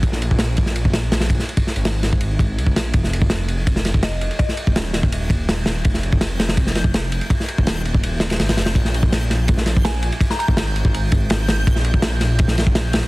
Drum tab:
RD |x-x-x-x-x-x-xxx-|xx-xx-x-x-x-x-x-|x-x-x-x-x-x-x-xx|x-x-x-x-x-x-x-x-|
SD |-o--o--o--o-oo-o|--o-o-o-------o-|-o--o----oo-o---|-o--o-o-----o-o-|
BD |o--o--o--o----o-|-o-----o--o--o--|o--o----o--o----|o--o---o--o-----|

RD |x-x-x-xxx-x-x-xx|x-x-x-x-x-xxxxxx|x-x-x-x-x-x-x-xx|x-x-x-x-x-x-x-x-|
SD |-o--o-oo-oo-o---|-o--o-----oooooo|-o--o-o--oo-o---|-o--o-------o-o-|
BD |o--o----o--o----|o--o---o--------|o--o----o--o----|o--o---o--o-----|

RD |x-x-x-x-x-x-x-xx|
SD |-o--o-o--oo-o-o-|
BD |o--o----o--o----|